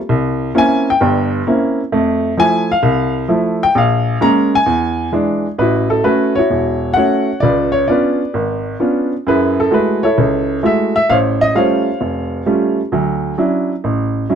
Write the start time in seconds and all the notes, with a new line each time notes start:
0.09 C2
0.55 A#3 C4 C#4 E4 G#5
0.90 G5
1.01 G1 G2
1.47 A#3 C4 C#4 E4
1.92 F2 A3
2.37 F3 A3 E4 G#5
2.72 F5
2.83 C2
3.28 F3 A3 E4
3.63 G5
3.75 A#1 F5
4.21 G#3 A#3 C#4 A#5
4.55 G#5
4.66 E2
5.12 E3 G#3 D4
5.58 A1 E4 F#4 B4
5.90 A4
6.04 A3 C#4 F#4 B4
6.35 E4 F#4 C#5
6.50 E1
6.94 A3 C#4 F#5
6.98 F#4 C#5
7.40 C#2 F4 D5
7.44 B4
7.72 C#5
7.88 B3 C#4 D4 F4 B4 D5
8.34 G#1
8.80 B3 C#4 D4 F4
9.27 F#2 E4 G#4 B4
9.60 A4
9.71 G#3 A3 E4 F#4 B4
10.03 E4 A4 C#5
10.18 C#2
10.63 G#3 A3 E4 F#4 E5
10.96 E5
11.09 A1 C5 C#5 F5
11.41 D#5
11.55 G3 A3 C#4 F4 C5 C#5 F5
12.01 F1
12.46 G3 A3 C#4 F4
12.92 D2 F#3
13.38 F#3 C#4 D4 E4
13.84 A1
14.30 F#3 C#4 D4 E4